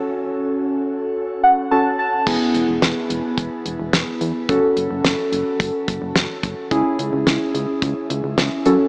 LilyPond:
<<
  \new Staff \with { instrumentName = "Synth keys" } { \time 4/4 \key fis \minor \tempo 4 = 108 << { r2 r8 fis''8 a''8 a''8 | r1 | r1 | r1 | } \\ { <cis' fis' a'>2. <cis' fis' a'>4 | <b e' gis'>1 | <cis' fis' a'>1 | <cis' e' gis'>2.~ <cis' e' gis'>8 <cis' fis' a'>8 | } >> }
  \new Staff \with { instrumentName = "FM bass" } { \clef bass \time 4/4 \key fis \minor r1 | e,,16 r16 e,,16 e,,16 e,,16 r16 e,,16 r16 e,,16 r16 e,,16 e,,16 e,,16 r16 e,16 r16 | fis,,16 r16 fis,,16 fis,,16 fis,,16 r16 fis,,16 r16 fis,,16 r16 fis,,16 fis,,16 fis,,16 r16 fis,,16 r16 | cis,16 r16 cis,16 cis,16 cis,16 r16 cis,16 r16 cis,16 r16 cis,16 cis,16 cis,16 r16 fis,16 r16 | }
  \new DrumStaff \with { instrumentName = "Drums" } \drummode { \time 4/4 r4 r4 r4 r4 | <cymc bd>8 hh8 <hh sn>8 hh8 <hh bd>8 hh8 <hh sn>8 hh8 | <hh bd>8 hh8 <hh sn>8 hh8 <hh bd>8 <hh bd>8 <hh sn>8 <hh bd>8 | <hh bd>8 hh8 <hh sn>8 hh8 <hh bd>8 hh8 <hh sn>8 hh8 | }
>>